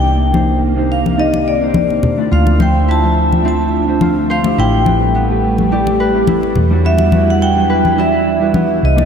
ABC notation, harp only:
X:1
M:4/4
L:1/8
Q:"Swing 16ths" 1/4=106
K:Ephr
V:1 name="Harp"
z8 | F c E z C z F c | E z B, z G B E z | B, z ^F B E z B, z |]